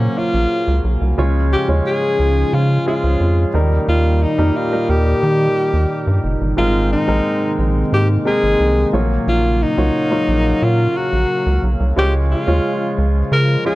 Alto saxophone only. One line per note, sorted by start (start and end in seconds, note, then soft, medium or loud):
0.00 0.19 C#4 medium
0.18 0.85 F4 loud
1.53 1.68 G4 medium
1.86 2.56 G#4 loud
2.54 2.87 F4 medium
2.88 3.51 F4 medium
3.89 4.24 F4 medium
4.22 4.58 D#4 medium
4.56 4.91 F4 medium
4.90 6.24 G4 loud
6.58 6.89 F4 loud
6.92 7.55 D#4 medium
7.93 8.08 G4 medium
8.27 8.90 G#4 loud
9.29 9.64 F4 medium
9.62 10.65 D#4 medium
10.63 10.98 F4 medium
10.97 11.64 F#4 loud
11.98 12.13 G4 loud
12.32 12.95 F4 medium
13.33 13.64 A#4 loud
13.66 13.75 G#4 loud